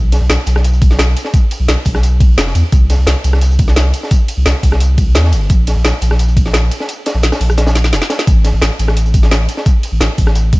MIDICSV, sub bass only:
0, 0, Header, 1, 2, 480
1, 0, Start_track
1, 0, Tempo, 346821
1, 1852, Time_signature, 4, 2, 24, 8
1, 14666, End_track
2, 0, Start_track
2, 0, Title_t, "Sub bass"
2, 0, Program_c, 0, 38
2, 0, Note_on_c, 0, 35, 103
2, 274, Note_off_c, 0, 35, 0
2, 293, Note_on_c, 0, 35, 91
2, 399, Note_off_c, 0, 35, 0
2, 411, Note_on_c, 0, 35, 92
2, 521, Note_off_c, 0, 35, 0
2, 648, Note_on_c, 0, 35, 104
2, 1591, Note_off_c, 0, 35, 0
2, 2213, Note_on_c, 0, 35, 91
2, 2319, Note_off_c, 0, 35, 0
2, 2330, Note_on_c, 0, 35, 95
2, 2441, Note_off_c, 0, 35, 0
2, 2571, Note_on_c, 0, 35, 104
2, 3283, Note_off_c, 0, 35, 0
2, 3291, Note_on_c, 0, 29, 85
2, 3508, Note_off_c, 0, 29, 0
2, 3530, Note_on_c, 0, 40, 99
2, 3641, Note_off_c, 0, 40, 0
2, 3770, Note_on_c, 0, 36, 100
2, 4114, Note_off_c, 0, 36, 0
2, 4132, Note_on_c, 0, 36, 88
2, 4238, Note_off_c, 0, 36, 0
2, 4248, Note_on_c, 0, 36, 95
2, 4360, Note_off_c, 0, 36, 0
2, 4489, Note_on_c, 0, 36, 105
2, 5432, Note_off_c, 0, 36, 0
2, 6053, Note_on_c, 0, 36, 93
2, 6159, Note_off_c, 0, 36, 0
2, 6171, Note_on_c, 0, 36, 96
2, 6281, Note_off_c, 0, 36, 0
2, 6411, Note_on_c, 0, 36, 101
2, 7132, Note_on_c, 0, 40, 103
2, 7153, Note_off_c, 0, 36, 0
2, 7371, Note_on_c, 0, 31, 87
2, 7391, Note_off_c, 0, 40, 0
2, 7587, Note_off_c, 0, 31, 0
2, 7612, Note_on_c, 0, 34, 102
2, 7955, Note_off_c, 0, 34, 0
2, 7972, Note_on_c, 0, 34, 90
2, 8079, Note_off_c, 0, 34, 0
2, 8090, Note_on_c, 0, 34, 92
2, 8201, Note_off_c, 0, 34, 0
2, 8329, Note_on_c, 0, 34, 108
2, 9271, Note_off_c, 0, 34, 0
2, 9892, Note_on_c, 0, 34, 89
2, 9998, Note_off_c, 0, 34, 0
2, 10008, Note_on_c, 0, 34, 93
2, 10120, Note_off_c, 0, 34, 0
2, 10249, Note_on_c, 0, 34, 104
2, 10969, Note_on_c, 0, 29, 90
2, 10990, Note_off_c, 0, 34, 0
2, 11081, Note_off_c, 0, 29, 0
2, 11451, Note_on_c, 0, 33, 100
2, 11794, Note_off_c, 0, 33, 0
2, 11813, Note_on_c, 0, 33, 91
2, 11919, Note_off_c, 0, 33, 0
2, 11930, Note_on_c, 0, 33, 94
2, 12041, Note_off_c, 0, 33, 0
2, 12170, Note_on_c, 0, 33, 103
2, 13112, Note_off_c, 0, 33, 0
2, 13731, Note_on_c, 0, 33, 94
2, 13838, Note_off_c, 0, 33, 0
2, 13849, Note_on_c, 0, 33, 92
2, 13961, Note_off_c, 0, 33, 0
2, 14091, Note_on_c, 0, 33, 103
2, 14666, Note_off_c, 0, 33, 0
2, 14666, End_track
0, 0, End_of_file